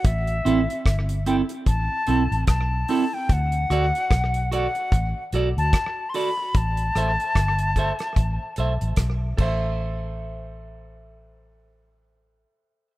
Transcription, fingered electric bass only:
X:1
M:4/4
L:1/16
Q:"Swing 16ths" 1/4=74
K:Ador
V:1 name="Fingered electric bass" clef=bass
A,,,2 A,,, z G,,,3 z A,,, z B,,, A,,, B,,,2 z2 | D,,2 D,, z B,,,3 z A,,, z B,,, D,, z4 | A,,,2 A,,, z G,,,3 z A,,, z B,,, A,,, B,,,2 A,,,2- | A,,,16 |]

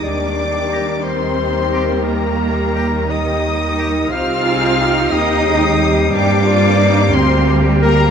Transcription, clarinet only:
X:1
M:6/8
L:1/8
Q:3/8=60
K:Eb
V:1 name="Clarinet"
d3 c3 | B3 e3 | f3 e2 z | d3 c z B |]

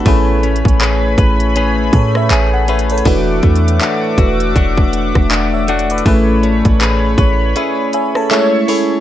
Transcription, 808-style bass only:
X:1
M:4/4
L:1/16
Q:"Swing 16ths" 1/4=80
K:A
V:1 name="808-style bass" clef=bass
A,,,3 A,,,3 A,,,4 A,,2 A,,,4 | E,,,2 E,,2 z2 E,,,2 E,,,3 E,,,4- E,,, | A,,,3 A,,,3 A,,,2 z8 |]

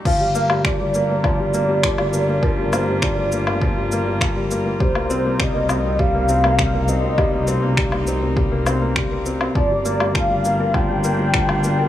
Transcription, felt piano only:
X:1
M:4/4
L:1/16
Q:1/4=101
K:Gm
V:1 name="Felt piano"
F, G, B, G, F, G, B, B, F, G, B, G, F, G, B, B, | F, G, B, G, F, G, B, B, F, G, B, G, F, G, B, B, | G, B, C B, G, B, C C G, B, C B, G, B, C C | G, B, C B, G, B, C C G, B, C B, G, B, C C |
F, G, B, G, F, G, B, B F, G, B, G, F, G, B, B |]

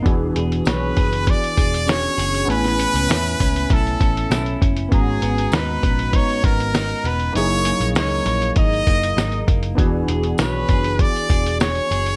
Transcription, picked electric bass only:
X:1
M:4/4
L:1/16
Q:1/4=99
K:Elyd
V:1 name="Picked electric bass" clef=bass
E,,,2 E,,,2 B,,,2 F,,,3 z E,,,4 F,,,2 | =A,,,3 C,, E,,2 C,,2 B,,,2 A,,,2 B,,,2 F,,,2 | G,,,2 G,,,2 D,,2 A,,,3 z G,,,4 E,,,2 | F,,,3 A,,, C,,2 A,,,2 G,,,2 F,,,2 G,,,2 F,,,2 |
E,,,2 E,,,2 B,,,2 F,,,3 z E,,,4 F,,,2 |]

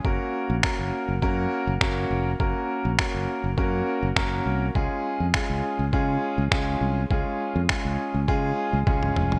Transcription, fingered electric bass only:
X:1
M:4/4
L:1/16
Q:1/4=102
K:F#
V:1 name="Fingered electric bass" clef=bass
F,,, z2 A,,, z F,,, z F,,, F,,2 z F,,, z2 E,,,2 | F,,, z2 A,,, z F,,, z F,,, F,,2 z F,,, F,,,2 ^B,,,2 | C,, z2 E,, z C,, z C,, C,2 z C,, z2 ^B,,,2 | C,, z2 E,, z C,, z C,, C,2 z C,, z2 E,,,2 |]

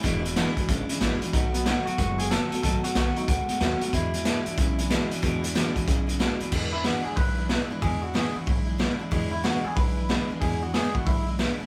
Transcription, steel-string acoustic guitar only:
X:1
M:4/4
L:1/8
Q:"Swing" 1/4=185
K:Emix
V:1 name="Steel-string acoustic guitar" clef=bass
[E,,B,,E,G,DE] [E,G,DE] [E,,B,,E,G,DE] [E,G,DE] [E,G,DE] [E,G,DE] [E,,B,,E,G,DE] [E,G,DE] | [B,,^D,A,B,F] [A,B,F] [B,,D,A,B,F] [A,B,F] [D,A,B,F] [A,B,F] [B,,D,A,B,F] [A,B,F] | [B,,^D,A,B,F] [A,B,F] [B,,D,A,B,F] [A,B,F] [D,A,B,F] [A,B,F] [B,,D,A,B,F] [A,B,F] | [E,,B,,E,G,DE] [E,G,DE] [E,,B,,E,G,DE] [E,G,DE] [E,G,DE] [E,G,DE] [E,,B,,E,G,DE] [E,G,DE] |
[E,,B,,E,G,DE] [E,G,DE] [E,,B,,E,G,DE] [E,G,DE] [E,G,DE] [E,G,DE] [E,,B,,E,G,DE] [E,G,DE] | [E,,B,,E,G,DE] [E,G,DE] [E,,B,,E,G,DE] [E,G,DE] [E,G,DE] [E,G,DE] [E,,B,,E,G,DE] [E,G,DE] | [E,,B,,E,G,DE] [E,G,DE] [E,,B,,E,G,DE] [E,G,DE] [E,G,DE] [E,G,DE] [E,,B,,E,G,DE] [E,G,DE] | [E,,B,,E,G,DE] [E,G,DE] [E,,B,,E,G,DE] [E,G,DE] [E,G,DE] [E,G,DE] [E,,B,,E,G,DE] [E,G,DE] |
[E,,B,,E,G,DE] [E,G,DE] [E,,B,,E,G,DE] [E,G,DE] [E,G,DE] [E,G,DE] [E,,B,,E,G,DE] [E,G,DE] |]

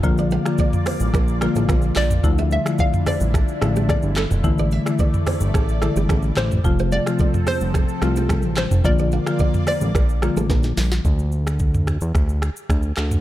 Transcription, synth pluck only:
X:1
M:4/4
L:1/8
Q:1/4=109
K:Bblyd
V:1 name="Synth pluck"
f2 z4 z d- | d e f d3 d A- | A3 z4 c- | c d2 c4 c |
d3 d4 z | z8 |]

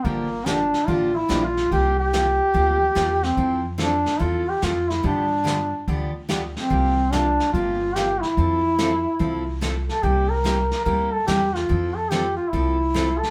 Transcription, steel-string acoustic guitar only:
X:1
M:4/4
L:1/8
Q:"Swing" 1/4=144
K:F
V:1 name="Steel-string acoustic guitar"
[D,F,B,DG] z [D,F,B,DG] z [D,F,B,DG] z [D,F,B,DG] z | [C,F,B,FG] z [C,F,B,FG] z [C,F,B,FG] z [C,F,B,FG] z | [F,CEA] z [F,CEA] z [F,CEA] z [F,CEA] z | [D,F,=B,DG] z [D,F,B,DG] z [D,F,B,DG] z [D,F,B,DG] z |
[C,F,B,FG] z [C,F,B,FG] z [C,F,B,FG] z [C,F,B,FG] z | [F,CEA] z [F,CEA] z [F,CEA] z [F,CEA] z | [C,G,B,EG] z [C,G,B,EG] z [C,G,B,EG] z [C,G,B,EG] z | [F,CEA] z [F,CEA] z [F,CEA] z [F,CEA] z |]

